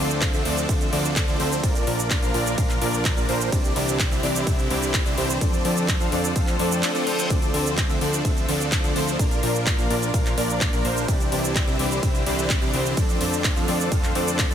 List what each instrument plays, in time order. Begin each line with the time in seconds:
Already playing: string section D3 A3 C4 F4 C5
0.00 analog synth bass D2, supersaw synth F3 C4 D4 A4 D5
0.11 shaker
0.22 kick, clap, closed hi-hat, ride, shaker
0.33 analog synth bass D2, supersaw synth F3 C4 D4 A4 E5, closed hi-hat, shaker
0.45 analog synth bass D2, supersaw synth F3 C4 D4 A4 D5, open hi-hat
0.57 closed hi-hat, shaker
0.69 analog synth bass D2, supersaw synth F3 C4 D4 A4 E5, kick, closed hi-hat, ride, shaker
0.81 closed hi-hat, shaker
0.93 analog synth bass D2, supersaw synth F3 C4 D4 A4 D5, open hi-hat
1.04 closed hi-hat, shaker
1.16 kick, clap, closed hi-hat, ride, shaker
1.28 analog synth bass D2, supersaw synth F3 C4 D4 A4 D5, closed hi-hat, shaker
1.40 analog synth bass D2, supersaw synth F3 C4 D4 A4 C5, open hi-hat
1.52 closed hi-hat, shaker
1.63 analog synth bass A#1, supersaw synth F3 A#3 D4 A#4 D5, string section F3 A#3 F4 A#4, kick, closed hi-hat, ride, shaker
1.75 closed hi-hat, shaker
1.87 analog synth bass A#1, supersaw synth F3 A#3 D4 A#4 D5, open hi-hat
1.99 closed hi-hat, shaker
2.11 kick, clap, closed hi-hat, ride, shaker
2.22 analog synth bass A#1, supersaw synth F3 A#3 D4 A#4 F5, closed hi-hat, shaker
2.34 analog synth bass A#1, supersaw synth F3 A#3 D4 A#4 D5, open hi-hat
2.46 closed hi-hat, shaker
2.58 analog synth bass A#1, supersaw synth F3 A#3 D4 A#4 F5, kick, closed hi-hat, ride, shaker
2.70 clap, closed hi-hat, shaker
2.82 analog synth bass A#1, supersaw synth F3 A#3 D4 A#4 D5, open hi-hat
2.93 closed hi-hat, shaker
3.05 kick, clap, closed hi-hat, ride, shaker
3.17 analog synth bass A#1, supersaw synth F3 A#3 D4 A#4 D5, closed hi-hat, shaker
3.29 analog synth bass A#1, supersaw synth F3 A#3 D4 A#4 C5, open hi-hat
3.41 closed hi-hat, shaker
3.52 analog synth bass C2, supersaw synth E3 C4 D4 G4 D5, string section G3 C4 E4 C5, kick, closed hi-hat, ride, shaker
3.64 closed hi-hat, shaker
3.76 analog synth bass C2, supersaw synth E3 C4 D4 G4 D5, open hi-hat
3.88 closed hi-hat, shaker
3.99 kick, clap, closed hi-hat, ride, shaker
4.11 analog synth bass C2, supersaw synth E3 C4 D4 G4 E5, closed hi-hat, shaker
4.23 analog synth bass C2, supersaw synth E3 C4 D4 G4 D5, open hi-hat
4.35 closed hi-hat, shaker
4.47 analog synth bass C2, supersaw synth E3 C4 D4 G4 E5, kick, closed hi-hat, ride, shaker
4.59 closed hi-hat, shaker
4.70 analog synth bass C2, supersaw synth E3 C4 D4 G4 D5, open hi-hat
4.82 closed hi-hat, shaker
4.94 kick, clap, closed hi-hat, ride, shaker
5.06 analog synth bass C2, supersaw synth E3 C4 D4 G4 D5, closed hi-hat, shaker
5.18 analog synth bass C2, supersaw synth E3 C4 D4 G4 C5, open hi-hat
5.29 closed hi-hat, shaker
5.41 analog synth bass F2, supersaw synth F3 C4 D4 A4 D5, string section A3 C4 F4, kick, closed hi-hat, ride, shaker
5.53 closed hi-hat, shaker
5.65 analog synth bass F2, supersaw synth F3 C4 D4 A4 D5, open hi-hat
5.77 closed hi-hat, shaker
5.88 kick, clap, closed hi-hat, ride, shaker
6.00 analog synth bass F2, supersaw synth F3 C4 D4 A4 F5, closed hi-hat, shaker
6.12 analog synth bass F2, supersaw synth F3 C4 D4 A4 D5, open hi-hat
6.24 closed hi-hat, shaker
6.36 analog synth bass F2, supersaw synth F3 C4 D4 A4 F5, kick, closed hi-hat, ride, reverse cymbal, shaker
6.47 clap, closed hi-hat, shaker
6.59 analog synth bass F2, supersaw synth F3 C4 D4 A4 D5, open hi-hat
6.71 closed hi-hat, shaker
6.83 clap, closed hi-hat, ride, shaker
6.95 supersaw synth F3 C4 D4 A4 D5, closed hi-hat, shaker
7.07 supersaw synth F3 C4 D4 A4 C5, open hi-hat
7.19 closed hi-hat, shaker
7.30 analog synth bass D2, supersaw synth F3 C4 D4 A4 D5, string section F4, kick, closed hi-hat, ride, shaker
7.42 closed hi-hat, shaker
7.54 analog synth bass D2, supersaw synth F3 C4 D4 A4 D5, open hi-hat
7.66 closed hi-hat, shaker
7.78 kick, clap, closed hi-hat, ride, shaker
7.89 analog synth bass D2, supersaw synth F3 C4 D4 A4 E5, closed hi-hat, shaker
8.01 analog synth bass D2, supersaw synth F3 C4 D4 A4 D5, open hi-hat
8.13 closed hi-hat, shaker
8.25 analog synth bass D2, supersaw synth F3 C4 D4 A4 E5, kick, closed hi-hat, ride, shaker
8.37 closed hi-hat, shaker
8.48 analog synth bass D2, supersaw synth F3 C4 D4 A4 D5, open hi-hat
8.60 closed hi-hat, shaker
8.72 kick, clap, closed hi-hat, ride, shaker
8.84 analog synth bass D2, supersaw synth F3 C4 D4 A4 D5, closed hi-hat, shaker
8.96 analog synth bass D2, supersaw synth F3 C4 D4 A4 C5, open hi-hat
9.08 closed hi-hat, shaker
9.19 analog synth bass A#1, supersaw synth F3 A#3 D4 A#4 D5, string section F3 A#3 A#4, kick, closed hi-hat, ride, shaker
9.31 closed hi-hat, shaker
9.43 analog synth bass A#1, supersaw synth F3 A#3 D4 A#4 D5, open hi-hat
9.55 closed hi-hat, shaker
9.67 kick, clap, closed hi-hat, ride, shaker
9.78 analog synth bass A#1, supersaw synth F3 A#3 D4 A#4 F5, closed hi-hat, shaker
9.90 analog synth bass A#1, supersaw synth F3 A#3 D4 A#4 D5, open hi-hat
10.02 closed hi-hat, shaker
10.14 analog synth bass A#1, supersaw synth F3 A#3 D4 A#4 F5, kick, closed hi-hat, ride, shaker
10.26 clap, closed hi-hat, shaker
10.38 analog synth bass A#1, supersaw synth F3 A#3 D4 A#4 D5, open hi-hat
10.49 closed hi-hat, shaker
10.61 kick, clap, closed hi-hat, ride, shaker
10.73 analog synth bass A#1, supersaw synth F3 A#3 D4 A#4 D5, closed hi-hat, shaker
10.85 analog synth bass A#1, supersaw synth F3 A#3 D4 A#4 C5, open hi-hat
10.97 closed hi-hat, shaker
11.08 analog synth bass C2, string section D3 G3 C4 E4 C5, supersaw synth E3 C4 D4 G4 D5, kick, closed hi-hat, ride, shaker
11.20 closed hi-hat, shaker
11.32 analog synth bass C2, supersaw synth E3 C4 D4 G4 D5, open hi-hat
11.44 closed hi-hat, shaker
11.56 kick, clap, closed hi-hat, ride, shaker
11.67 analog synth bass C2, supersaw synth E3 C4 D4 G4 E5, closed hi-hat, shaker
11.79 analog synth bass C2, supersaw synth E3 C4 D4 G4 D5, open hi-hat
11.91 closed hi-hat, shaker
12.03 analog synth bass C2, supersaw synth E3 C4 D4 G4 E5, kick, closed hi-hat, ride, shaker
12.15 closed hi-hat, shaker
12.26 analog synth bass C2, supersaw synth E3 C4 D4 G4 D5, open hi-hat
12.38 closed hi-hat, shaker
12.50 kick, clap, closed hi-hat, ride, shaker
12.62 analog synth bass C2, supersaw synth E3 C4 D4 G4 D5, closed hi-hat, shaker
12.73 analog synth bass C2, supersaw synth E3 C4 D4 G4 C5, open hi-hat
12.85 closed hi-hat, shaker
12.97 analog synth bass F2, supersaw synth F3 C4 D4 A4 D5, string section A3 F4 C5, kick, closed hi-hat, ride, shaker
13.09 closed hi-hat, shaker
13.21 analog synth bass F2, supersaw synth F3 C4 D4 A4 D5, open hi-hat
13.33 closed hi-hat, shaker
13.44 kick, clap, closed hi-hat, ride, shaker
13.56 analog synth bass F2, supersaw synth F3 C4 D4 A4 F5, closed hi-hat, shaker
13.68 analog synth bass F2, supersaw synth F3 C4 D4 A4 D5, open hi-hat
13.80 closed hi-hat, shaker
13.92 analog synth bass F2, supersaw synth F3 C4 D4 A4 F5, kick, closed hi-hat, ride, shaker
14.03 clap, closed hi-hat, shaker
14.15 analog synth bass F2, supersaw synth F3 C4 D4 A4 D5, open hi-hat
14.27 closed hi-hat, shaker
14.39 kick, clap, closed hi-hat, ride, shaker
14.51 analog synth bass F2, supersaw synth F3 C4 D4 A4 D5, closed hi-hat, shaker